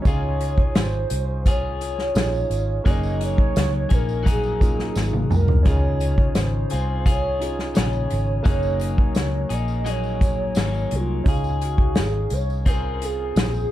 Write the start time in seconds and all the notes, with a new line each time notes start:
0.02 C#2 C#4 D#4 F4, kick, closed hi-hat, tambourine
0.07 F4 G#4 C#5
0.41 closed hi-hat, tambourine
0.58 kick
0.75 G#1, snare, closed hi-hat, tambourine
0.80 C5
1.10 C2, closed hi-hat, tambourine
1.46 F4 G#4 C#5, kick, closed hi-hat, tambourine
1.81 closed hi-hat, tambourine
1.99 snare
2.14 A#1 C#4 D#4 F4 G#4, snare, closed hi-hat, tambourine
2.34 tambourine
2.50 G#1, closed hi-hat, tambourine
2.84 F#1 F#3 A#3 C#4 D#4 G#4, kick, closed hi-hat, tambourine
2.89 G#4 D#5
3.03 tambourine
3.21 C#5, closed hi-hat, tambourine
3.38 kick
3.56 C#2, snare, closed hi-hat, tambourine
3.89 A#1 A#3 D#4 G#4, kick, closed hi-hat, tambourine
3.94 A#4
4.09 tambourine
4.23 F#3 A#3 D#4 G#4, kick, closed hi-hat, tambourine
4.31 G#4
4.43 tambourine
4.60 A#3 C#4 D#4 F4, kick, closed hi-hat, tambourine
4.79 snare
4.96 G#1, snare, tambourine
5.13 high tom
5.31 C2 A#4, mid tom, tambourine
5.48 floor tom
5.63 C#2 C#3 C#4 D#4 F4, kick, closed hi-hat, tambourine
5.68 G#4 C#5
6.00 closed hi-hat, tambourine
6.18 kick
6.35 G#1, snare, closed hi-hat, tambourine
6.39 C5
6.70 C2 C4 F4 G#4, closed hi-hat, tambourine
7.06 F4 G#4, kick, closed hi-hat, tambourine
7.11 C#5
7.40 C#4 D#4 F4 G#4, closed hi-hat, tambourine
7.59 snare
7.74 A#1 C#3 F4 G#4, snare, closed hi-hat, tambourine
7.79 C#5
7.93 tambourine
8.10 G#1, closed hi-hat, tambourine
8.43 F#1 F#3 A#3 C#4 D#4 G#4, kick, closed hi-hat, tambourine
8.47 G#4 C#5
8.63 tambourine
8.80 C#5, closed hi-hat, tambourine
8.98 kick
9.15 C#2, snare, closed hi-hat, tambourine
9.49 A#1 A#3 D#4 G#4, closed hi-hat, tambourine
9.54 D#5
9.68 tambourine
9.85 F#3 A#3 D#4 G#4, closed hi-hat, tambourine
9.89 C#5
10.04 tambourine
10.21 kick, closed hi-hat, tambourine
10.55 G#1 F#3 A#3 D#4 G#4, snare, closed hi-hat, tambourine
10.74 tambourine
10.91 C2, closed hi-hat, tambourine
10.95 F4
11.24 C#2 C#4 D#4 F5, kick, closed hi-hat, tambourine
11.28 G#4
11.44 tambourine
11.61 F#4, closed hi-hat, tambourine
11.78 kick
11.95 G#1, snare, closed hi-hat, tambourine
12.00 G#4
12.30 C2 C#5, closed hi-hat, tambourine
12.50 tambourine
12.66 C4 F4 G#4 A#4, kick, closed hi-hat, tambourine
13.02 G#4, closed hi-hat, tambourine
13.36 A#1, snare, closed hi-hat, tambourine
13.54 tambourine